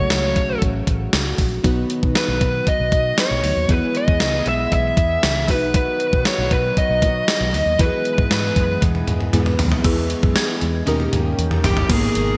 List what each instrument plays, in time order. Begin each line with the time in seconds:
Already playing: analog synth pad C#3 F#3 A3 F#4, synth keys A3 C#4 F#4 A4, lead electric guitar C#5
0.10 fingered electric bass C#2, lead electric guitar C#5, snare, closed hi-hat
0.36 fingered electric bass B1, kick, closed hi-hat
0.62 fingered electric bass A1, kick, closed hi-hat
0.87 fingered electric bass A1, kick, closed hi-hat
1.13 fingered electric bass C#2, snare, closed hi-hat
1.38 fingered electric bass A#1, kick, open hi-hat
1.63 fingered electric bass B1, analog synth pad D#3 B3, synth keys B3 D#4 F#4 B4, kick, closed hi-hat
1.90 closed hi-hat
2.03 fingered electric bass B2, kick
2.15 lead electric guitar B4, snare, closed hi-hat
2.28 fingered electric bass B1
2.41 fingered electric bass B2, kick, closed hi-hat
2.67 lead electric guitar D#5, kick, closed hi-hat
2.80 fingered electric bass B1
2.92 fingered electric bass B2, kick, closed hi-hat
3.18 lead electric guitar C#5, snare, closed hi-hat
3.31 fingered electric bass B1
3.44 fingered electric bass D2, open hi-hat
3.57 fingered electric bass D#2
3.68 fingered electric bass E2, analog synth pad E3 G#3 B3 G#4, synth keys B3 E4 G#4 B4, lead electric guitar B4, kick, closed hi-hat
3.95 lead electric guitar D#5, closed hi-hat
4.08 fingered electric bass E2, kick
4.20 fingered electric bass C#2, snare, closed hi-hat
4.46 fingered electric bass B1, lead electric guitar E5, closed hi-hat
4.72 fingered electric bass B1, lead electric guitar E5, kick, closed hi-hat
4.97 fingered electric bass E2, kick, closed hi-hat
5.23 fingered electric bass C#2, snare, closed hi-hat
5.48 fingered electric bass B1, analog synth pad D#3 F#3 F#4, synth keys B3 D#4 F#4 B4, lead electric guitar B4, kick, open hi-hat
5.74 lead electric guitar B4, kick, closed hi-hat
6.00 closed hi-hat
6.13 fingered electric bass B2, kick
6.25 lead electric guitar C#5, snare, closed hi-hat
6.38 fingered electric bass B1
6.51 fingered electric bass B2, lead electric guitar B4, kick, closed hi-hat
6.77 lead electric guitar D#5, kick, closed hi-hat
6.90 fingered electric bass B1
7.02 fingered electric bass B2, kick, closed hi-hat
7.28 snare, closed hi-hat
7.41 fingered electric bass B1
7.54 fingered electric bass D2, open hi-hat
7.66 fingered electric bass D#2
7.78 fingered electric bass E2, analog synth pad E3 G#3 B3 G#4, synth keys B3 E4 F#4 B4, lead electric guitar B4, kick, closed hi-hat
7.86 synth keys G#4
8.05 closed hi-hat
8.18 fingered electric bass G#2, kick
8.31 fingered electric bass G#2, lead electric guitar B4, snare, closed hi-hat
8.56 fingered electric bass F#2, kick, closed hi-hat
8.82 fingered electric bass E2, kick, closed hi-hat, high tom
8.95 high tom
9.07 fingered electric bass E2, closed hi-hat, mid tom
9.21 mid tom
9.33 fingered electric bass G#2, synth keys B3 E4 G#4 B4, closed hi-hat, mid tom
9.46 mid tom
9.59 fingered electric bass D#2, floor tom, open hi-hat
9.72 floor tom
9.84 fingered electric bass E2, analog synth pad E3 G#3 B3 G#4, synth keys B3 E4 G#4 B4, marimba E4, kick, closed hi-hat, crash
10.10 closed hi-hat
10.23 fingered electric bass F#2, kick
10.36 marimba G#4, snare, closed hi-hat, tambourine
10.61 fingered electric bass E2, closed hi-hat
10.86 fingered electric bass D#2, analog synth pad D#3 A#3 C#4 G4, synth keys C#4 D#4 G4 A#4, marimba D#4, closed hi-hat, high tom
11.00 high tom
11.13 fingered electric bass D#2, closed hi-hat, mid tom
11.38 fingered electric bass E2, closed hi-hat
11.51 mid tom
11.64 fingered electric bass G1, lead electric guitar G4, floor tom, open hi-hat
11.77 floor tom
11.89 fingered electric bass G#1, analog synth pad B2 D#3 G#4 A#4, synth keys A#3 B3 D#4 G#4 A#4, lead electric guitar G#4, kick, closed hi-hat, crash
12.15 fingered electric bass G#1, closed hi-hat